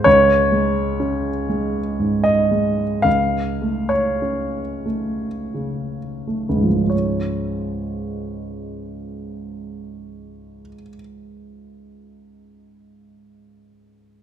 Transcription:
0.04 C#2 C#5
0.52 G#3
1.00 C#4
1.49 G#3
1.99 G#2
2.24 D#5
2.51 G#3
3.02 C#2 F5
3.62 A3
3.89 C#5
4.22 C#4
4.86 A3
5.54 C#3
6.27 A3
6.49 C#2
6.56 G#2
6.63 F3
6.70 G#3
6.77 C#4
6.84 F4
6.90 C#5

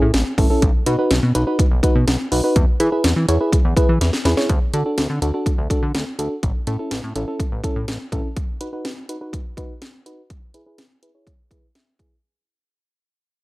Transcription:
0.02 A2
0.14 A1, snare, closed hi-hat
0.38 A1 C#4 E4 A4, kick, open hi-hat
0.50 C#4 E4 A4
0.62 B1, kick, closed hi-hat
0.86 B2 D#4 F#4 B4, closed hi-hat
0.99 D#4 F#4 B4
1.11 B1, snare, closed hi-hat
1.23 B2
1.35 B1 D#4 F#4 B4, closed hi-hat
1.47 D#4 F#4 B4
1.59 kick, closed hi-hat
1.71 B1
1.83 D#4 F#4 B4, kick, closed hi-hat
1.95 B2
2.08 B1, snare, closed hi-hat
2.32 B1 D#4 F#4 B4, open hi-hat
2.44 D#4 F#4 B4
2.56 E2, kick, closed hi-hat
2.80 E3 E4 G#4 B4, closed hi-hat
2.92 E4 G#4 B4
3.04 E2, snare, closed hi-hat
3.16 E3
3.28 E2 E4 G#4 C#5, closed hi-hat
3.41 E4 G#4 B4
3.53 kick, closed hi-hat
3.65 E2
3.77 E4 G#4 B4, kick, closed hi-hat
3.89 E3
4.01 E2, snare, closed hi-hat
4.13 snare
4.25 E2 E4 G#4 B4, snare, closed hi-hat
4.37 E4 G#4 C#5, snare
4.49 D2, kick, closed hi-hat
4.74 D3 D4 F#4 A4, closed hi-hat
4.86 D4 F#4 A4
4.98 D2, snare, closed hi-hat
5.10 D3
5.22 D2 D4 F#4 A4, closed hi-hat
5.34 D4 F#4 A4
5.46 kick, closed hi-hat
5.58 D2
5.70 D4 F#4 A4, kick, closed hi-hat
5.83 D3
5.95 D2, snare, closed hi-hat
6.19 D2 D4 F#4 A4, closed hi-hat
6.43 A1, kick, closed hi-hat
6.67 A2 C#4 E4 A4, closed hi-hat
6.79 C#4 E4 A4
6.91 A1, snare, closed hi-hat
7.04 A2
7.16 A1 C#4 E4 A4, closed hi-hat
7.28 C#4 E4 A4
7.40 kick, closed hi-hat
7.52 A1
7.64 C#4 E4 A4, kick, closed hi-hat
7.76 A2
7.88 A1, snare, closed hi-hat
8.12 A1 C#4 E4 A4, kick, closed hi-hat
8.37 kick, closed hi-hat
8.61 D#4 F#4 B4, closed hi-hat
8.73 D#4 F#4 B4
8.85 snare, closed hi-hat
9.09 D#4 F#4 B4, closed hi-hat
9.21 D#4 F#4 B4
9.33 kick, closed hi-hat
9.57 D#4 F#4 B4, kick, closed hi-hat
9.82 snare, closed hi-hat
10.06 D#4 F#4 B4, closed hi-hat
10.30 kick, closed hi-hat
10.54 E4 G#4 B4, closed hi-hat
10.66 E4 G#4 B4
10.78 snare, closed hi-hat
11.03 E4 G#4 B4, closed hi-hat
11.15 E4 G#4 C#5
11.27 kick, closed hi-hat
11.51 E4 G#4 B4, kick, closed hi-hat
11.75 E5, snare, closed hi-hat
11.99 E4 G#4 B4 G#5, kick, closed hi-hat

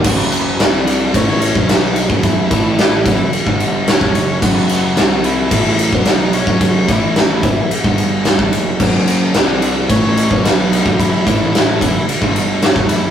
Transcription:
0.02 F#1 F#2 C#3 F#3 A3 F#4 A4, kick, crash
0.06 F#3
0.32 ride
0.58 C2 C3 G3 C4 G4 D5 G5, snare, ride
0.62 D4
0.87 ride
1.13 A1 A2 C#3 E3 F#3 A3 C#4 F#4 A4 C#5, kick, ride
1.41 C#4 C#5, ride
1.55 B1 B2 F#3 B3 F#5, kick
1.69 B3 B4, snare, ride
1.96 D#4 D#5, ride
2.09 F#1 F#2 C#3 F#3 A3 A4, kick
2.23 E4 E5, kick, ride
2.51 A1 A2 E3 A3 E4 E5, kick, ride
2.79 snare, ride
3.04 F#1 F#2 C#3 F#3 F#4 A4, kick, ride
3.19 F#1 F#2 C#3
3.33 muted overdriven electric guitar stroke, muted picked electric bass stroke, muted distorted electric guitar stroke, ride
3.46 G1 G2 D3 G3 D4 G4 G5, kick
3.60 ride
3.88 C#4 C#5, snare, ride
4.01 C2 C3 F#3 G3 A3 C#4 A4 C#5, kick
4.14 F#1 F#2 C#3, ride
4.42 F#1 F#2 C#3 F#3 F#4 F#5, kick, crash
4.69 ride
4.96 C2 C3 G3 C4 G4 G5, snare, ride
5.24 E4 E5, ride
5.49 A1 A2 C#3 E3 F#3 A3 F#4 A4, kick, ride
5.79 ride
5.91 B1 B2 F#3 B3 F#5, kick
6.05 D#4 D#5, snare, ride
6.33 C#4 C#5, ride
6.46 F#1 F#2 C#3 F#3 A3 A4, kick
6.61 kick, ride
6.88 A1 A2 E3 A3 E4 E5, kick, ride
6.94 E5
7.16 snare, ride
7.43 F#1 F#2 C#3 F#3 F#4 A4, kick, ride
7.56 F#1 F#2 C#3
7.70 muted picked electric bass stroke, muted overdriven electric guitar stroke, muted distorted electric guitar stroke, ride
7.83 G1 G2 D3 G3 D4 G4 G5, kick
7.98 ride
8.25 snare, ride
8.39 C2 C3 F#3 G3 A3 C#4 A4 C#5, kick
8.52 F#1 F#2 C#3, ride
8.79 F#1 F#2 C#3 F#3, kick, crash
9.08 ride
9.33 C2 C3 G3 C4 G4 G5, snare, ride
9.37 D4 D5
9.62 D4 D5, ride
9.88 A1 A2 C#3 E3 F#3 A3 C#4 F#4 A4 C#5, kick, ride
10.17 ride
10.30 B1 B2 F#3 B3 F#5, kick
10.44 B3 B4, snare, ride
10.73 snare, ride
10.84 F#1 F#2 C#3 F#3 A3 A4, kick
10.88 C#3
10.98 E4 E5, kick, ride
11.26 A1 A2 E3 A3 E4 E5, kick, ride
11.55 snare, ride
11.80 F#1 F#2 C#3 F#3 A3 F#4 A4, kick, ride
11.93 F#1 F#2 C#3
12.07 muted overdriven electric guitar stroke, muted distorted electric guitar stroke, muted picked electric bass stroke, ride
12.21 G1 G2 D3 G3 D4 G4 G5, kick
12.36 ride
12.62 C#4 C#5, snare, ride
12.73 C2 C3 F#3 G3 A3 C#4 A4 C#5, kick
12.88 F#1 F#2 C#3 E4 E5, snare, ride

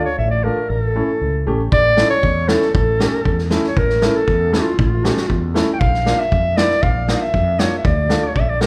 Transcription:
0.05 C#5
0.18 A1 E5
0.31 D5
0.44 A3 D4 F4 A#4
0.70 A1 A#4
0.81 A4
0.96 A3 C#4 E4
1.21 C#2
1.47 A1 A3 C#4 G4
1.72 A1 D5, kick
1.97 A3 C#4 E4, snare
2.10 C#5
2.23 E2, kick
2.48 A3 C#4 E4 A4, snare
2.62 snare
2.74 A1 A4, kick
3.00 A3 C#4 G4, snare
3.25 E2, kick
3.38 snare
3.50 A3 C#4 E4, snare
3.64 C#5, snare
3.77 A1 A#4, kick
3.90 snare
4.02 A3 C#4 E4, snare
4.07 A#4
4.16 A4
4.28 E2, kick
4.52 A3 C#4 E4 F4, snare
4.79 A1 F4, kick
5.03 A3 C#4 G4, snare
5.17 snare
5.30 E2, kick
5.54 A3 C#4 E4, snare
5.73 G5
5.79 A#1 F5, kick
5.94 snare
6.06 A#3 D4 F4, snare
6.19 E5
6.32 F2, kick
6.57 A#3 D4 E4 D5, snare
6.71 snare
6.83 A#1 F5, kick
7.08 A#3 D4 F4, snare
7.14 F5
7.21 E5
7.34 F2, kick
7.59 A#3 D4 F4 C#5, snare
7.78 E5
7.85 D2 D5, kick
8.09 A3 D4 F4, snare
8.24 C#5
8.36 A#1 E5, kick
8.49 D5
8.61 A3 D4 G4 A#4, snare

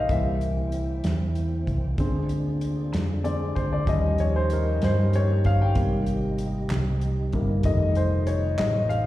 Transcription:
Already playing: C3 G3 A#3 C4 G4 G#4 A#4 C5 D#5 F5 G5
0.08 C2 E3 G3 A#3 C4 E4 E5, kick, closed hi-hat
0.41 closed hi-hat
0.72 closed hi-hat
1.04 E2, snare, closed hi-hat
1.35 closed hi-hat
1.67 C2, kick, closed hi-hat
1.96 D2 D3 G#3 D4 F4 G#4 D5, kick, closed hi-hat
2.00 C4
2.29 closed hi-hat
2.61 closed hi-hat
2.93 F2, snare, closed hi-hat
3.24 D3 G#3 C4 D5, closed hi-hat
3.55 D2 C5, kick, closed hi-hat
3.73 D5
3.87 D#2 F3 G3 A#3 C#4 D#4 G4 D#5, kick, closed hi-hat
4.18 C#5, closed hi-hat
4.36 C5
4.50 A#4, closed hi-hat
4.82 G2 C5, snare, closed hi-hat
5.13 C#5, closed hi-hat
5.44 G1 F5, kick, closed hi-hat
5.62 G5
5.74 G#1 C3 G3 A#3 C4 D#5, kick, closed hi-hat
6.06 closed hi-hat
6.38 closed hi-hat
6.70 C2, snare, clap, closed hi-hat
7.01 closed hi-hat
7.32 G1 C3 G3 A#3, kick, closed hi-hat
7.63 F1 C3 D#3 G3 A3 F4 D#5, kick, closed hi-hat
7.95 C5, closed hi-hat
8.27 C#5, closed hi-hat
8.58 A1 D#5, snare, clap, closed hi-hat
8.89 F5, closed hi-hat

